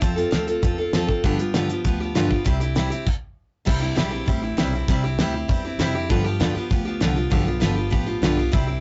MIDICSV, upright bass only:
0, 0, Header, 1, 3, 480
1, 0, Start_track
1, 0, Key_signature, 0, "major"
1, 0, Tempo, 303951
1, 24, Time_signature, 4, 2, 24, 8
1, 13900, End_track
2, 0, Start_track
2, 0, Title_t, "Upright bass"
2, 0, Program_c, 0, 32
2, 27, Note_on_c, 0, 41, 99
2, 362, Note_off_c, 0, 41, 0
2, 507, Note_on_c, 0, 38, 78
2, 915, Note_off_c, 0, 38, 0
2, 992, Note_on_c, 0, 40, 86
2, 1398, Note_off_c, 0, 40, 0
2, 1463, Note_on_c, 0, 41, 80
2, 1873, Note_off_c, 0, 41, 0
2, 1951, Note_on_c, 0, 43, 94
2, 2623, Note_off_c, 0, 43, 0
2, 2924, Note_on_c, 0, 38, 86
2, 3591, Note_off_c, 0, 38, 0
2, 3880, Note_on_c, 0, 36, 94
2, 4550, Note_off_c, 0, 36, 0
2, 5798, Note_on_c, 0, 36, 87
2, 6251, Note_off_c, 0, 36, 0
2, 6260, Note_on_c, 0, 34, 95
2, 6732, Note_off_c, 0, 34, 0
2, 6759, Note_on_c, 0, 33, 81
2, 7212, Note_off_c, 0, 33, 0
2, 7222, Note_on_c, 0, 35, 97
2, 7692, Note_off_c, 0, 35, 0
2, 7708, Note_on_c, 0, 36, 95
2, 8165, Note_off_c, 0, 36, 0
2, 8174, Note_on_c, 0, 38, 94
2, 8648, Note_off_c, 0, 38, 0
2, 8671, Note_on_c, 0, 40, 91
2, 9127, Note_off_c, 0, 40, 0
2, 9136, Note_on_c, 0, 41, 97
2, 9608, Note_off_c, 0, 41, 0
2, 9636, Note_on_c, 0, 43, 89
2, 10091, Note_off_c, 0, 43, 0
2, 10100, Note_on_c, 0, 40, 91
2, 10328, Note_off_c, 0, 40, 0
2, 10593, Note_on_c, 0, 38, 89
2, 11056, Note_off_c, 0, 38, 0
2, 11068, Note_on_c, 0, 36, 89
2, 11533, Note_off_c, 0, 36, 0
2, 11555, Note_on_c, 0, 35, 96
2, 12008, Note_off_c, 0, 35, 0
2, 12017, Note_on_c, 0, 31, 93
2, 12487, Note_off_c, 0, 31, 0
2, 12515, Note_on_c, 0, 33, 88
2, 12964, Note_off_c, 0, 33, 0
2, 12974, Note_on_c, 0, 35, 85
2, 13445, Note_off_c, 0, 35, 0
2, 13476, Note_on_c, 0, 36, 89
2, 13900, Note_off_c, 0, 36, 0
2, 13900, End_track
3, 0, Start_track
3, 0, Title_t, "Muted upright bass strokes"
3, 10343, Note_on_c, 9, 29, 44
3, 10501, Note_off_c, 9, 29, 0
3, 13900, End_track
0, 0, End_of_file